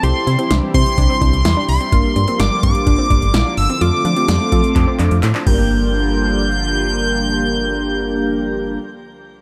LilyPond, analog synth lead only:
\new Staff \with { instrumentName = "Analog synth lead" } { \time 4/4 \key g \dorian \tempo 4 = 127 c'''4 r8 c'''2 c'''8~ | c'''4 d'''8 d'''2 e'''8 | d'''2. r8 g'''8~ | g'''1~ |
g'''1 | }